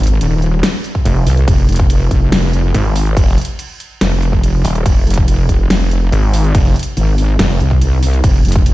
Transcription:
0.00 wobble bass G#1, closed hi-hat
0.07 closed hi-hat
0.21 wobble bass D#1, closed hi-hat, crash
0.42 closed hi-hat
0.63 snare, closed hi-hat, crash
0.84 closed hi-hat
0.95 kick
1.05 detuned saw bass F1, closed hi-hat, crash
1.26 wobble bass C2, open hi-hat
1.37 closed hi-hat
1.48 wobble bass F1, kick, closed hi-hat, crash
1.69 wobble bass F1, closed hi-hat
1.72 closed hi-hat
1.76 kick, closed hi-hat
1.90 closed hi-hat, crash
2.11 wobble bass F1, kick, closed hi-hat
2.32 snare, closed hi-hat, crash
2.53 closed hi-hat
2.74 detuned saw bass G#1, closed hi-hat, crash
2.96 open hi-hat
3.06 closed hi-hat
3.17 detuned saw bass F1, kick, closed hi-hat, crash
3.38 closed hi-hat
3.41 closed hi-hat
3.45 closed hi-hat
3.59 closed hi-hat, crash
3.80 closed hi-hat
4.01 wobble bass F1, snare, closed hi-hat, crash
4.22 closed hi-hat
4.33 kick
4.43 closed hi-hat, crash
4.65 detuned saw bass D#1, open hi-hat
4.75 closed hi-hat
4.86 wobble bass F1, kick, closed hi-hat, crash
5.07 wobble bass F1, closed hi-hat
5.10 closed hi-hat
5.14 kick, closed hi-hat
5.28 closed hi-hat, crash
5.49 wobble bass F1, kick, closed hi-hat
5.70 snare, closed hi-hat, crash
5.91 closed hi-hat
6.12 detuned saw bass G#1, closed hi-hat, crash
6.33 open hi-hat
6.44 closed hi-hat
6.55 detuned saw bass F1, kick, closed hi-hat, crash
6.76 closed hi-hat
6.79 closed hi-hat
6.83 closed hi-hat
6.97 wobble bass G#1, closed hi-hat, crash
7.18 open hi-hat
7.39 detuned saw bass F1, snare, closed hi-hat, crash
7.60 wobble bass C2, closed hi-hat
7.71 kick
7.81 closed hi-hat, crash
8.03 open hi-hat
8.13 closed hi-hat
8.24 wobble bass F1, kick, closed hi-hat, crash
8.45 wobble bass F1, closed hi-hat
8.48 closed hi-hat
8.52 kick, closed hi-hat
8.66 closed hi-hat, crash

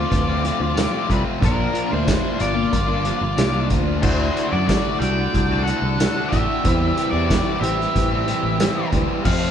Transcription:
Already playing: distorted electric guitar F3 A3 C4 F4, lead electric guitar F4 D5
0.10 picked electric bass D2, reed electric piano C4 F4 B4, kick, closed hi-hat
0.25 distorted electric guitar A3 C4 F4
0.42 distorted electric guitar F3 A3 C4 F4, reed electric piano C4 F4 C5, closed hi-hat
0.60 picked electric bass D2, muted overdriven electric guitar stroke
0.75 distorted electric guitar F3 A3 C4 F4, reed electric piano C4 F4 A4, snare, closed hi-hat, tambourine
0.90 distorted electric guitar A3 C4 F4
1.07 picked electric bass C2, distorted electric guitar F3 A3 C4 F4, reed electric piano C4 F4 A4, lead electric guitar B4, kick, closed hi-hat
1.12 lead electric guitar D4
1.24 distorted electric guitar A3 C4 F4
1.38 distorted electric guitar A#2 F3 A#3 D4 F4, reed electric piano D4 F4
1.42 picked electric bass A#1, lead electric guitar D4 A#4, reed electric piano A#4, kick, closed hi-hat
1.72 distorted electric guitar F3 A#3 D4 F4, reed electric piano D4 F4 A#4, closed hi-hat
1.89 picked electric bass D2, distorted electric guitar A#3 D4 F4, lead electric guitar C5
1.94 lead electric guitar E4
2.04 distorted electric guitar A#2 F3 A#3 D4 F4, reed electric piano D4 F4 A#4, kick, closed hi-hat, tambourine
2.08 snare
2.38 picked electric bass G1, distorted electric guitar F3 A#3 D4 F4, reed electric piano D4 F4 A#4, lead electric guitar D5, closed hi-hat
2.42 lead electric guitar F4
2.54 distorted electric guitar A#3 D4 F4, muted overdriven electric guitar stroke
2.71 picked electric bass G1, reed electric piano D4 F4 A#4, kick, closed hi-hat
2.85 distorted electric guitar A#3 D4 F4
3.03 distorted electric guitar F3 A#3 D4 F4, reed electric piano D4 F4 G4, closed hi-hat
3.21 picked electric bass G1, muted overdriven electric guitar stroke
3.36 picked electric bass C2, distorted electric guitar A#2 F3 A#3 D4 F4, reed electric piano D4 F4 A#4, snare, closed hi-hat, tambourine
3.52 distorted electric guitar A#3 D4 F4
3.69 picked electric bass D2, distorted electric guitar F3 A#3 D4 F4, reed electric piano D4 F4 A#4, kick, closed hi-hat
3.85 distorted electric guitar A#3 D4 F4
4.00 picked electric bass D2, distorted electric guitar D3 A3 D4 F#4, reed electric piano E4 F#4 D5, lead electric guitar E4 C5, kick, crash
4.33 distorted electric guitar D3 A3 D4 F#4, reed electric piano E4 F#4 D5, closed hi-hat
4.49 picked electric bass F#2, distorted electric guitar A3 D4 F#4, lead electric guitar F#4 D5
4.65 distorted electric guitar D3 A3 D4 F#4, reed electric piano E4 F#4 D5, kick, closed hi-hat, tambourine
4.70 snare
4.99 picked electric bass C2, distorted electric guitar D3 A3 D4 F#4, reed electric piano E4 F#4 D5, lead electric guitar D5 G5, closed hi-hat
5.15 distorted electric guitar A3 D4 F#4, muted overdriven electric guitar stroke
5.31 picked electric bass C2, reed electric piano E4 F#4 A4, kick, closed hi-hat
5.48 distorted electric guitar A3 D4 F#4
5.63 distorted electric guitar D3 A3 D4 F#4, reed electric piano E4 F#4 D5, lead electric guitar A4 F#5, closed hi-hat
5.70 overdriven electric guitar D4
5.82 picked electric bass C2, muted overdriven electric guitar stroke
5.96 distorted electric guitar D3 A3 D4 F#4, reed electric piano E4 F#4, closed hi-hat, tambourine
6.00 reed electric piano D5, snare
6.13 distorted electric guitar A3 D4 F#4
6.28 distorted electric guitar D3 A3 D4, reed electric piano E4 F#4 E5, lead electric guitar G4 E5
6.32 picked electric bass A1, distorted electric guitar F#4, kick, closed hi-hat
6.46 distorted electric guitar A3 D4 F#4
6.63 picked electric bass E2, distorted electric guitar E3 G3 C4 G4, reed electric piano E4 G4 C5, kick, closed hi-hat
6.68 overdriven electric guitar E4
6.97 distorted electric guitar E3 G3 C4 G4, reed electric piano E4 G4 C5, closed hi-hat
7.10 picked electric bass E2, distorted electric guitar C4 G4, overdriven electric guitar E4, lead electric guitar F#4 D5
7.15 distorted electric guitar G3
7.28 distorted electric guitar E3 G3 C4 G4, reed electric piano E4 G4 A4, overdriven electric guitar E4, kick, snare, closed hi-hat, tambourine
7.59 picked electric bass A1, distorted electric guitar E3 G3 C4 G4, reed electric piano E4 G4 C5, lead electric guitar G4 E5
7.63 overdriven electric guitar E4, closed hi-hat
7.78 distorted electric guitar G3 C4 G4, muted overdriven electric guitar stroke, snare
7.93 picked electric bass A1, reed electric piano E4 G4 C5, kick, closed hi-hat
8.09 distorted electric guitar G3 C4 G4, overdriven electric guitar E4
8.26 distorted electric guitar E3 G3 C4 G4, reed electric piano E4 G4 C5, closed hi-hat
8.30 overdriven electric guitar E4
8.43 picked electric bass A1, muted overdriven electric guitar stroke
8.58 distorted electric guitar E3 G3 C4 G4, reed electric piano E4 G4 C5, snare, closed hi-hat, tambourine
8.63 overdriven electric guitar E4
8.75 distorted electric guitar G3 C4 G4, overdriven electric guitar E4
8.92 picked electric bass D2, distorted electric guitar E3 G3 C4 G4, reed electric piano E4 G4 B4, overdriven electric guitar E4, kick, closed hi-hat
9.08 distorted electric guitar G3 C4 G4
9.24 overdriven electric guitar F2 C3, picked electric bass F2, distorted electric guitar F3 A3 C4 F4, reed electric piano F4 A4 C5, lead electric guitar A4 F5, kick, crash

